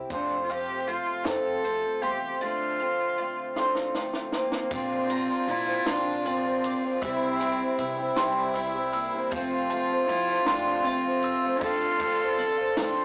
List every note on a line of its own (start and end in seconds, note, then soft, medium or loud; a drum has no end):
0.00 0.11 C4 soft
0.00 0.11 E4 soft
0.00 0.10 G4 medium
0.10 0.97 F2 loud
0.10 0.49 F2 medium
0.10 0.49 C3 medium
0.10 2.39 C3 medium
0.10 0.49 F3 medium
0.10 0.49 A3 medium
0.10 2.40 A3 medium
0.10 0.48 C4 medium
0.10 0.40 D4 medium
0.10 0.48 F4 medium
0.10 4.69 F4 medium
0.10 0.87 C5 medium
0.10 kick loud
0.10 closed hi-hat medium
0.44 0.53 F4 medium
0.49 0.85 F3 soft
0.49 0.86 A3 soft
0.49 0.87 C4 soft
0.49 0.87 F4 soft
0.49 0.89 G4 loud
0.49 2.03 F5 medium
0.49 closed hi-hat medium
0.87 1.24 F3 medium
0.87 1.24 A3 medium
0.87 1.23 C4 medium
0.87 1.26 F4 loud
0.87 1.23 F4 medium
0.87 1.63 C5 medium
0.87 closed hi-hat medium
1.24 1.83 F2 medium
1.24 1.64 F2 medium
1.24 1.64 C3 medium
1.24 1.62 F3 medium
1.24 1.64 A3 medium
1.24 1.63 C4 medium
1.24 1.63 F4 medium
1.24 2.03 A4 loud
1.24 2.41 A5 medium
1.24 kick medium
1.24 snare loud
1.24 closed hi-hat medium
1.64 2.02 F3 medium
1.64 2.03 A3 medium
1.64 2.02 C4 medium
1.64 2.01 F4 medium
1.64 2.41 C5 medium
1.64 closed hi-hat medium
2.02 2.31 E2 medium
2.02 2.41 A3 soft
2.02 2.41 C4 soft
2.02 2.40 F4 medium
2.02 2.44 G4 medium
2.02 2.41 C6 medium
2.02 closed hi-hat medium
2.41 2.79 D3 medium
2.41 4.69 D3 medium
2.41 2.80 F3 medium
2.41 2.80 A3 medium
2.41 4.69 C4 medium
2.41 2.80 C4 medium
2.41 3.95 F4 loud
2.41 2.78 F4 medium
2.41 3.17 D5 medium
2.79 3.18 A3 soft
2.79 3.18 C4 soft
2.79 3.18 F4 medium
2.79 4.33 F5 medium
3.18 3.56 F3 medium
3.18 3.56 A3 medium
3.18 3.56 C4 medium
3.18 3.55 F4 medium
3.18 3.94 D5 medium
3.56 3.95 D3 medium
3.56 3.94 F3 medium
3.56 3.95 A3 medium
3.56 3.95 C4 medium
3.56 3.95 F4 medium
3.56 4.33 C6 medium
3.56 snare medium
3.75 snare medium
3.95 4.33 F3 medium
3.95 4.34 A3 medium
3.95 4.33 C4 medium
3.95 4.32 F4 medium
3.95 4.70 D5 medium
3.95 snare medium
4.13 snare medium
4.32 4.75 A#3 medium
4.32 4.72 C4 medium
4.32 4.71 F4 medium
4.32 4.72 D6 medium
4.32 snare medium
4.52 snare medium
4.71 5.29 A#1 medium
4.71 5.10 A#2 medium
4.71 13.05 C3 medium
4.71 5.10 D3 medium
4.71 5.08 F3 medium
4.71 5.09 A#3 medium
4.71 7.00 A#3 medium
4.71 5.10 C4 medium
4.71 5.52 C4 loud
4.71 7.00 D4 medium
4.71 6.91 F4 loud
4.71 5.11 F4 medium
4.71 5.48 D5 medium
4.71 kick loud
4.71 ride medium
4.71 shaker loud
4.91 shaker soft
5.09 5.29 F3 medium
5.09 5.29 A#3 medium
5.09 5.28 C4 medium
5.09 5.27 F4 medium
5.09 6.64 A#5 medium
5.09 ride medium
5.09 shaker soft
5.28 5.68 F3 soft
5.28 5.67 A#3 medium
5.28 5.66 C4 medium
5.28 5.65 F4 medium
5.47 5.77 A#2 medium
5.47 5.91 E4 loud
5.47 6.24 D5 medium
5.47 ride medium
5.66 5.86 F3 soft
5.66 5.86 A#3 soft
5.66 5.86 C4 soft
5.66 5.86 F4 soft
5.86 6.74 A#1 loud
5.86 6.24 A#2 medium
5.86 6.25 D3 medium
5.86 6.23 F3 medium
5.86 6.24 A#3 medium
5.86 6.25 C4 medium
5.86 6.30 D4 loud
5.86 6.25 F4 medium
5.86 7.02 C6 medium
5.86 snare loud
5.86 ride medium
5.86 shaker loud
6.07 shaker soft
6.24 6.44 F3 medium
6.24 6.44 A#3 medium
6.24 6.44 C4 medium
6.24 6.43 F4 medium
6.24 7.02 D5 medium
6.24 ride medium
6.28 7.03 C4 loud
6.44 6.84 F3 soft
6.44 6.84 A#3 soft
6.44 6.82 C4 soft
6.44 6.81 F4 medium
6.64 7.01 D6 medium
6.64 ride medium
6.82 7.01 F3 soft
6.82 7.02 A#3 soft
6.82 7.01 C4 medium
6.82 7.02 F4 medium
6.94 7.03 F4 medium
7.01 7.60 C2 medium
7.01 7.40 C3 medium
7.01 7.39 G3 medium
7.01 9.30 G3 medium
7.01 7.39 C4 medium
7.01 7.79 E4 loud
7.01 9.30 E4 medium
7.01 7.41 E4 medium
7.01 7.41 G4 medium
7.01 7.77 E5 medium
7.01 kick loud
7.01 ride medium
7.01 shaker medium
7.06 8.15 C4 loud
7.22 shaker soft
7.40 7.59 G3 medium
7.40 7.60 C4 medium
7.40 7.59 E4 medium
7.40 7.58 G4 medium
7.40 8.93 G5 medium
7.40 ride medium
7.40 shaker soft
7.59 7.99 C4 soft
7.59 7.98 E4 soft
7.59 7.96 G4 medium
7.78 8.07 C3 medium
7.78 9.34 E4 medium
7.78 8.53 E5 medium
7.78 ride medium
7.98 8.17 C4 soft
7.98 8.17 E4 medium
7.98 8.17 G4 medium
8.16 9.04 C2 loud
8.16 8.55 C3 medium
8.16 8.54 G3 medium
8.16 8.55 C4 medium
8.16 8.55 E4 loud
8.16 8.56 G4 medium
8.16 9.32 C6 medium
8.16 snare loud
8.16 ride medium
8.16 shaker loud
8.37 shaker soft
8.54 8.74 G3 medium
8.54 8.75 C4 medium
8.54 8.74 E4 medium
8.54 8.73 G4 medium
8.54 8.92 E5 medium
8.54 ride medium
8.74 9.14 C4 soft
8.74 9.13 E4 soft
8.74 9.12 G4 medium
8.93 9.34 A#3 medium
8.93 9.31 E6 medium
8.93 ride medium
9.13 9.34 C4 soft
9.13 9.33 E4 soft
9.13 9.32 G4 medium
9.31 9.90 F2 loud
9.31 9.71 F2 medium
9.31 9.71 C3 medium
9.31 11.60 F3 medium
9.31 9.70 F3 medium
9.31 11.60 A3 medium
9.31 9.71 A3 medium
9.31 10.10 C4 loud
9.31 9.72 C4 medium
9.31 11.61 F4 loud
9.31 9.72 F4 medium
9.31 10.85 C5 medium
9.31 kick loud
9.31 ride medium
9.31 shaker loud
9.52 shaker soft
9.70 9.90 F3 medium
9.70 9.90 A3 medium
9.70 9.91 C4 medium
9.70 11.23 A5 medium
9.70 ride medium
9.70 shaker soft
9.74 9.90 F4 medium
9.91 10.30 F3 soft
9.91 10.29 A3 medium
9.91 10.29 C4 medium
9.91 10.27 F4 medium
10.08 10.38 F3 medium
10.08 10.46 E4 loud
10.08 ride medium
10.29 10.47 F3 soft
10.29 10.47 A3 soft
10.29 10.48 C4 soft
10.29 10.47 F4 soft
10.46 10.85 F2 medium
10.46 11.34 F2 loud
10.46 10.86 C3 medium
10.46 10.85 F3 medium
10.46 10.86 A3 medium
10.46 10.86 C4 medium
10.46 10.86 D4 loud
10.46 10.87 F4 loud
10.46 11.62 C6 medium
10.46 snare loud
10.46 ride medium
10.46 shaker loud
10.66 shaker soft
10.85 11.05 F3 medium
10.85 11.05 A3 medium
10.85 11.63 C4 loud
10.85 11.05 C4 medium
10.85 11.62 F5 medium
10.85 ride medium
10.89 11.04 F4 medium
11.06 11.45 F3 soft
11.06 11.44 A3 soft
11.06 11.44 C4 soft
11.06 11.43 F4 medium
11.23 11.62 E6 medium
11.23 ride medium
11.44 11.62 F3 soft
11.44 11.63 A3 soft
11.44 11.63 C4 medium
11.44 11.63 F4 medium
11.61 12.19 D2 medium
11.61 12.01 D3 medium
11.61 13.05 F3 medium
11.61 12.00 F3 medium
11.61 12.01 A3 medium
11.61 12.01 C4 medium
11.61 13.05 D4 medium
11.61 12.77 F4 loud
11.61 12.02 F4 medium
11.61 13.05 A4 loud
11.61 12.38 D5 medium
11.61 kick loud
11.61 ride medium
11.61 shaker loud
11.82 shaker soft
12.00 12.20 F3 medium
12.00 12.20 A3 medium
12.00 12.21 C4 medium
12.00 13.05 F5 medium
12.00 kick medium
12.00 ride medium
12.00 shaker soft
12.04 12.19 F4 medium
12.20 12.59 A3 soft
12.20 12.58 C4 medium
12.20 12.56 F4 medium
12.38 12.67 D3 medium
12.38 13.05 D5 medium
12.38 ride medium
12.38 shaker soft
12.57 12.77 A3 soft
12.57 12.77 C4 medium
12.57 12.76 F4 medium
12.57 shaker soft
12.77 13.05 D2 loud
12.77 13.05 D3 medium
12.77 13.05 F3 medium
12.77 13.05 A3 medium
12.77 13.05 C4 medium
12.77 13.05 F4 loud
12.77 13.05 C6 medium
12.77 snare loud
12.77 ride medium
12.77 shaker medium
12.96 shaker soft